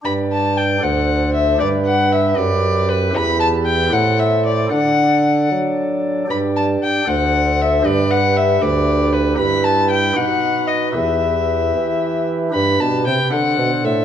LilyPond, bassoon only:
\new Staff \with { instrumentName = "Bassoon" } { \clef bass \time 6/8 \key g \major \tempo 4. = 77 g,4. d,4. | g,4. fis,4. | e,4. a,4. | d4. fis4. |
g,4 r8 d,4. | g,4. d,4. | \key e \minor g,4. b,4. | e,4. e4. |
\key g \major g,8 b,8 c8 d8 b,8 a,8 | }